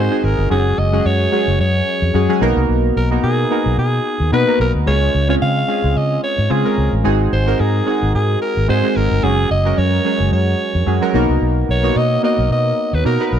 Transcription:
Already playing: G#3 C4 D#4 F#4 G#4 A#4 C5
0.11 G#3 C4 D#4 F#4 G#4
0.18 C5
0.24 G#1 A#4
0.39 G1
0.50 F#1 F#3 G#3 C#4 F#4 G#4
0.78 F#1 D#5
0.92 F#3 G#3 C#4 F#4 G#4
1.05 F#2 C#5
1.32 F#3 G#3 C#4 F#4 G#4
1.48 F#1
1.60 F#2 C#5
2.02 F2
2.14 F#2 F#3 G#3 C#4 F#4 G#4
2.29 F#3 G#3 C#4 F#4 G#4
2.41 B1 A#3 B3 D#4 F#4 A#4
2.57 C2
2.69 B1
2.96 B1 A#4
3.11 A#3 B3 D#4 F#4 A#4
3.24 B2 G#4
3.51 A#3 B3 D#4 F#4 A#4
3.66 B1
3.78 B2 G#4
4.20 D#2
4.32 B2 A#3 B3 D#4 F#4 B4
4.47 A#3 B3 D#4 F#4 A#4
4.60 B1 A#4
4.75 D2
4.86 C#2 G#3 C#4 F4 G#4 C#5
5.15 C#2
5.28 G#3 C4 C#4 F4 G#4 C#5
5.42 C#3 F5
5.68 G#3 C4 C#4 F4 G#4
5.84 C#2
5.96 C#3 D#5
6.23 C#5
6.38 G#2
6.50 C#3 G#3 C4 C#4 F4 G#4
6.64 G#3 C4 C#4 F4 A#4
6.78 C#2
6.93 A1
7.04 G#1 G#3 C4 D#4 F#4 G#4
7.33 G#1 C5
7.46 G#3 C4 D#4 F#4 A#4
7.60 G#2 G#4
7.86 G#3 C4 D#4 F#4 G#4
8.03 G#1
8.15 G#2 G#4
8.42 A#4
8.57 G#1
8.68 G#2 G#3 C4 D#4 F#4 G#4 C5
8.83 G#3 C4 D#4 F#4 G#4
8.96 G#1 A#4
9.11 G1
9.23 F#1 F#3 G#3 C#4 F#4 G#4
9.51 F#1 D#5
9.65 F#3 G#3 C#4 F#4 A#4
9.78 F#2 C#5
10.05 F#3 G#3 C#4 F#4 G#4
10.20 F#1
10.33 F#2 C#5
10.75 F2
10.86 F#2 F#3 G#3 C#4 F#4 G#4
11.01 F#3 G#3 C#4 F#4 A#4
11.14 B1 A#3 B3 D#4 F#4 A#4
11.29 C2
11.42 B1
11.69 B1 C#5
11.83 A#3 B3 D#4 F#4 C#5
11.96 B2 D#5
12.23 A#3 B3 D#4 F#4 A#4 D#5
12.38 B1
12.51 B2 D#5
12.93 D#2 B4
13.05 B2 A#3 B3 D#4 F#4 A#4
13.20 B3 D#4 F#4 A#4 B4
13.27 B4
13.33 B1 A#4

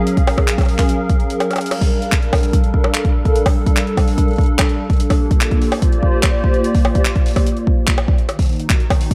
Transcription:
Already playing: F#3 C#4 G#4 A#4 F5
0.07 closed hi-hat
0.17 kick, closed hi-hat
0.27 open hi-hat, high bongo
0.38 kick, high bongo
0.48 clap, closed hi-hat
0.58 kick, closed hi-hat, high bongo
0.61 closed hi-hat, high bongo
0.63 closed hi-hat, high bongo
0.66 open hi-hat, high bongo
0.79 kick, clap, open hi-hat, high bongo
0.89 closed hi-hat
1.09 kick, closed hi-hat
1.20 closed hi-hat
1.30 closed hi-hat
1.40 closed hi-hat, high bongo
1.51 closed hi-hat, high bongo
1.53 closed hi-hat, high bongo
1.56 high bongo
1.58 closed hi-hat, high bongo
1.66 closed hi-hat
1.71 G3, closed hi-hat, crash, high bongo
1.77 D4
1.81 kick, open hi-hat
2.02 A4, closed hi-hat
2.12 kick, clap, closed hi-hat
2.22 closed hi-hat
2.33 kick, open hi-hat, high bongo
2.35 open hi-hat
2.38 open hi-hat
2.40 open hi-hat
2.43 open hi-hat
2.46 open hi-hat
2.48 open hi-hat
2.51 kick, closed hi-hat, open hi-hat
2.64 closed hi-hat
2.74 kick
2.84 high bongo
2.94 clap, closed hi-hat
3.05 kick, closed hi-hat
3.25 kick, closed hi-hat
3.36 closed hi-hat
3.46 kick, open hi-hat, high bongo
3.66 kick, closed hi-hat
3.77 clap, closed hi-hat
3.87 closed hi-hat
3.97 kick, open hi-hat, high bongo
4.08 open hi-hat
4.18 kick, closed hi-hat
4.28 closed hi-hat
4.31 closed hi-hat
4.33 closed hi-hat
4.36 kick, closed hi-hat
4.38 closed hi-hat
4.41 closed hi-hat
4.43 closed hi-hat
4.46 closed hi-hat
4.59 kick, clap, closed hi-hat, high bongo
4.69 closed hi-hat
4.90 kick, closed hi-hat
4.93 closed hi-hat
4.97 closed hi-hat
5.00 A#3, closed hi-hat
5.10 kick, open hi-hat, high bongo
5.15 G4
5.23 F4
5.31 kick, closed hi-hat
5.41 clap, closed hi-hat
5.51 kick, closed hi-hat
5.62 open hi-hat
5.66 C5
5.72 D5, open hi-hat, high bongo
5.82 kick, closed hi-hat
5.92 closed hi-hat
6.03 kick
6.23 kick, clap, closed hi-hat, high bongo
6.44 kick
6.54 closed hi-hat
6.64 closed hi-hat
6.75 kick, open hi-hat
6.85 high bongo
6.95 kick, closed hi-hat
7.05 clap, closed hi-hat
7.16 kick, closed hi-hat
7.26 open hi-hat
7.28 open hi-hat
7.31 open hi-hat
7.33 open hi-hat
7.36 kick, open hi-hat, high bongo
7.46 closed hi-hat
7.57 closed hi-hat
7.67 kick
7.87 kick, clap
7.98 closed hi-hat, high bongo
8.08 kick
8.18 closed hi-hat
8.29 D#3, closed hi-hat, high bongo
8.39 kick, open hi-hat
8.42 D#4, open hi-hat
8.46 open hi-hat
8.49 open hi-hat
8.53 open hi-hat
8.56 F#4, closed hi-hat, open hi-hat
8.70 kick, clap, closed hi-hat
8.80 closed hi-hat
8.90 kick, open hi-hat, high bongo
9.01 open hi-hat
9.11 kick, closed hi-hat

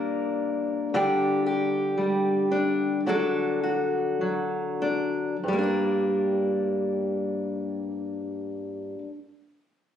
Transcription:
Already playing: A#2 G3 A#3 D4 A#4
0.94 D3 G3 D4 G4
1.46 G4
1.98 G3
2.52 D4
3.06 D3 F#3 D4 F#4 A4
3.63 F#4
4.21 F#3
4.82 D4
5.43 G2
5.48 G3
5.53 A#3
5.59 D4
5.63 A#4

